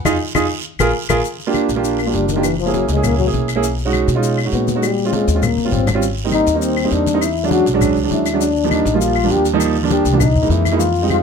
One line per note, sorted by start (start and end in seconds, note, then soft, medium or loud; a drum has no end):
0.05 0.16 F2 loud
0.05 0.15 D#4 loud
0.05 0.15 F4 medium
0.05 0.15 G#4 medium
0.05 high conga loud
0.05 long guiro loud
0.05 claves loud
0.05 maracas loud
0.35 0.46 F2 medium
0.35 0.45 D#4 loud
0.35 0.45 F4 medium
0.35 0.45 G#4 medium
0.35 high conga loud
0.35 long guiro loud
0.35 claves loud
0.35 maracas medium
0.79 0.91 A#1 medium
0.79 0.90 F4 loud
0.79 0.90 G#4 loud
0.79 0.90 A#4 loud
0.79 high conga loud
0.79 long guiro loud
0.79 claves loud
0.79 maracas loud
1.09 1.21 A#1 loud
1.09 1.19 F4 loud
1.09 1.19 G#4 loud
1.09 1.19 A#4 loud
1.09 high conga loud
1.09 claves loud
1.09 maracas loud
1.24 long guiro medium
1.24 maracas medium
1.40 high conga soft
1.40 maracas soft
1.47 1.68 A#3 medium
1.47 1.68 D4 medium
1.47 1.68 F4 medium
1.47 1.68 G4 medium
1.54 high conga medium
1.54 short guiro medium
1.54 claves medium
1.54 maracas soft
1.69 2.11 A#1 medium
1.69 short guiro medium
1.69 maracas medium
1.76 1.97 A#3 medium
1.76 1.97 D4 medium
1.76 1.98 F4 medium
1.76 1.98 G4 medium
1.84 high conga soft
1.84 long guiro medium
1.84 maracas medium
1.98 2.16 A#3 medium
1.98 high conga soft
1.98 claves medium
1.98 maracas soft
2.06 2.27 A#3 medium
2.06 2.27 D4 medium
2.06 2.28 F4 medium
2.06 2.28 G4 medium
2.14 2.83 F#1 medium
2.14 2.29 G3 medium
2.14 high conga soft
2.14 short guiro medium
2.14 maracas soft
2.29 2.46 D#3 medium
2.29 high conga medium
2.29 short guiro medium
2.29 maracas medium
2.36 2.44 A#3 medium
2.36 2.44 D4 medium
2.36 2.44 F4 medium
2.36 2.44 G4 medium
2.43 2.59 E3 medium
2.43 high conga soft
2.43 long guiro medium
2.43 claves medium
2.43 maracas medium
2.59 2.75 F3 medium
2.59 high conga soft
2.59 maracas soft
2.66 2.87 A#3 medium
2.66 2.87 C#4 medium
2.66 2.87 E4 medium
2.66 2.88 G#4 medium
2.74 2.88 F#3 medium
2.74 high conga medium
2.74 short guiro medium
2.74 maracas soft
2.88 3.30 C#2 medium
2.88 3.05 G#3 medium
2.88 short guiro medium
2.88 maracas medium
2.96 3.17 A#3 medium
2.96 3.17 C#4 medium
2.96 3.17 E4 medium
2.96 3.17 G#4 medium
3.03 3.18 A#3 medium
3.03 high conga soft
3.03 low conga medium
3.03 long guiro medium
3.03 claves medium
3.03 maracas medium
3.19 3.28 F#3 medium
3.19 high conga soft
3.19 low conga medium
3.19 maracas soft
3.26 3.47 A#3 medium
3.26 3.47 C#4 medium
3.26 3.47 E4 medium
3.26 3.48 G#4 medium
3.34 4.03 B1 medium
3.34 high conga medium
3.34 short guiro medium
3.34 maracas soft
3.48 short guiro medium
3.48 claves medium
3.48 maracas medium
3.56 3.63 A#3 medium
3.56 3.64 C#4 medium
3.56 3.64 E4 medium
3.56 3.64 G#4 loud
3.63 high conga soft
3.63 long guiro medium
3.63 maracas loud
3.79 high conga soft
3.79 maracas soft
3.85 4.06 G#3 medium
3.85 4.07 C#4 medium
3.85 4.07 D#4 medium
3.85 4.07 F#4 medium
3.93 high conga medium
3.93 short guiro medium
3.93 claves medium
3.93 maracas soft
4.08 4.50 B2 medium
4.08 short guiro medium
4.08 maracas medium
4.15 4.36 G#3 medium
4.15 4.37 C#4 medium
4.15 4.37 D#4 medium
4.15 4.37 F4 medium
4.23 long guiro medium
4.23 maracas medium
4.38 high conga soft
4.38 claves medium
4.38 maracas soft
4.45 4.66 G#3 medium
4.45 4.66 C#4 medium
4.45 4.66 D#4 medium
4.45 4.67 F#4 medium
4.53 5.22 A#2 medium
4.53 4.85 B3 medium
4.53 high conga soft
4.53 short guiro medium
4.53 maracas soft
4.68 high conga medium
4.68 short guiro medium
4.68 maracas medium
4.75 4.83 G#3 medium
4.75 4.83 C#4 medium
4.75 4.83 D#4 medium
4.75 4.83 F#4 medium
4.83 5.14 G3 medium
4.83 high conga soft
4.83 long guiro medium
4.83 claves medium
4.83 maracas medium
4.98 high conga soft
4.98 maracas soft
5.05 5.26 G#3 medium
5.05 5.26 C4 medium
5.05 5.26 C#4 medium
5.05 5.27 F4 medium
5.13 5.45 G#3 medium
5.13 high conga medium
5.13 short guiro medium
5.13 maracas soft
5.28 5.55 D#2 loud
5.28 short guiro medium
5.28 maracas medium
5.35 5.42 G#3 medium
5.35 5.42 C4 medium
5.35 5.43 C#4 medium
5.35 5.43 F4 medium
5.43 5.74 A#3 medium
5.43 high conga soft
5.43 low conga medium
5.43 long guiro medium
5.43 claves medium
5.43 maracas medium
5.57 5.71 A#1 medium
5.57 high conga medium
5.57 maracas soft
5.64 5.86 G3 medium
5.64 5.86 C4 medium
5.64 5.86 C#4 medium
5.64 5.86 F4 medium
5.72 6.41 G#1 medium
5.72 5.88 C4 medium
5.72 low conga medium
5.72 short guiro medium
5.72 maracas soft
5.87 low conga medium
5.87 short guiro medium
5.87 claves medium
5.87 maracas medium
5.94 6.02 G3 medium
5.94 6.02 C4 medium
5.94 6.02 C#4 medium
5.94 6.02 F4 medium
6.02 high conga soft
6.02 long guiro medium
6.02 maracas medium
6.17 high conga soft
6.17 maracas soft
6.24 6.45 G3 medium
6.24 6.46 A#3 medium
6.24 6.46 C4 medium
6.24 6.46 D#4 medium
6.32 6.63 D#4 medium
6.32 high conga medium
6.32 short guiro medium
6.32 claves medium
6.32 maracas soft
6.47 6.88 D#2 medium
6.47 short guiro medium
6.47 maracas medium
6.54 6.75 G3 medium
6.54 6.75 A#3 medium
6.54 6.76 C4 medium
6.54 6.76 D#4 medium
6.62 6.93 C4 medium
6.62 high conga soft
6.62 long guiro medium
6.62 maracas medium
6.77 high conga soft
6.77 claves medium
6.77 maracas soft
6.84 7.05 G3 medium
6.84 7.05 A#3 medium
6.84 7.05 C4 medium
6.84 7.06 D#4 medium
6.92 7.61 E2 medium
6.92 7.24 D4 medium
6.92 high conga soft
6.92 short guiro medium
6.92 maracas soft
7.06 high conga medium
7.06 short guiro medium
7.06 maracas medium
7.13 7.21 G3 medium
7.13 7.22 A#3 medium
7.13 7.22 C4 medium
7.13 7.22 D#4 medium
7.21 7.52 E4 medium
7.21 high conga soft
7.21 long guiro medium
7.21 claves medium
7.21 maracas medium
7.36 high conga soft
7.36 maracas soft
7.43 7.65 F#3 medium
7.43 7.65 G#3 medium
7.43 7.65 C#4 medium
7.43 7.65 D4 medium
7.51 7.66 F#4 loud
7.51 high conga medium
7.51 short guiro medium
7.51 maracas soft
7.66 7.94 B1 medium
7.66 short guiro medium
7.66 maracas medium
7.74 7.95 F#3 medium
7.74 7.95 G#3 medium
7.74 7.95 C#4 medium
7.74 7.95 D4 medium
7.81 high conga soft
7.81 low conga medium
7.81 long guiro medium
7.81 claves medium
7.81 maracas medium
7.96 8.10 C#2 medium
7.96 high conga soft
7.96 maracas soft
8.04 8.25 F#3 medium
8.04 8.25 G#3 medium
8.04 8.25 C#4 medium
8.04 8.25 D4 medium
8.10 8.80 D#2 medium
8.10 8.43 E4 medium
8.10 high conga medium
8.10 short guiro medium
8.10 maracas soft
8.26 short guiro medium
8.26 claves medium
8.26 maracas medium
8.34 8.41 F#3 medium
8.34 8.41 G#3 medium
8.34 8.41 C#4 medium
8.34 8.42 D4 medium
8.41 8.72 D4 medium
8.41 high conga soft
8.41 long guiro medium
8.41 maracas loud
8.56 high conga soft
8.56 maracas soft
8.64 8.85 F3 medium
8.64 8.85 G3 medium
8.64 8.85 A#3 medium
8.64 8.85 D4 medium
8.71 9.01 D#4 medium
8.71 high conga medium
8.71 short guiro medium
8.71 claves medium
8.71 maracas soft
8.85 9.27 A#1 loud
8.85 short guiro medium
8.85 maracas medium
8.94 9.14 F3 medium
8.94 9.15 G3 medium
8.94 9.15 A#3 medium
8.94 9.15 F4 medium
9.00 9.33 F4 medium
9.00 high conga soft
9.00 long guiro medium
9.00 maracas medium
9.16 high conga soft
9.16 claves medium
9.16 maracas soft
9.24 9.44 F3 medium
9.24 9.44 G3 medium
9.24 9.45 A#3 medium
9.24 9.45 D4 medium
9.30 10.00 D#2 medium
9.30 9.46 G4 medium
9.30 high conga soft
9.30 short guiro medium
9.30 maracas soft
9.45 short guiro medium
9.45 maracas medium
9.54 9.74 F3 medium
9.54 9.74 G3 medium
9.54 9.75 A#3 medium
9.54 9.75 D#4 loud
9.60 high conga soft
9.60 long guiro medium
9.60 claves medium
9.60 maracas loud
9.76 high conga soft
9.76 maracas soft
9.83 10.04 F3 medium
9.83 10.04 G3 medium
9.83 10.04 A#3 medium
9.83 10.05 D4 medium
9.90 10.22 G4 medium
9.90 high conga loud
9.90 short guiro medium
9.90 maracas soft
10.05 10.33 C2 medium
10.05 short guiro medium
10.05 maracas medium
10.13 10.20 F3 medium
10.13 10.21 G3 medium
10.13 10.21 A#3 medium
10.13 10.21 D4 medium
10.20 10.52 D#4 medium
10.20 high conga soft
10.20 low conga medium
10.20 long guiro medium
10.20 claves medium
10.20 maracas medium
10.35 10.49 D#2 medium
10.35 high conga soft
10.35 low conga medium
10.35 maracas soft
10.42 10.63 E3 medium
10.42 10.64 G#3 medium
10.42 10.64 A#3 medium
10.42 10.64 D#4 medium
10.49 11.19 F2 medium
10.49 10.81 E4 medium
10.49 high conga medium
10.49 short guiro medium
10.49 maracas soft
10.65 high conga medium
10.65 short guiro medium
10.65 claves medium
10.65 maracas medium
10.72 10.80 E3 medium
10.72 10.80 G#3 medium
10.72 10.80 A#3 medium
10.72 10.80 D#4 medium
10.79 11.09 F4 medium
10.79 high conga soft
10.79 long guiro medium
10.79 maracas medium
10.96 high conga soft
10.96 maracas soft
11.02 11.23 G3 medium
11.02 11.23 G#3 medium
11.02 11.23 C4 medium
11.02 11.23 D#4 medium
11.10 11.19 F4 medium
11.10 high conga medium
11.10 short guiro medium
11.10 claves medium
11.10 maracas soft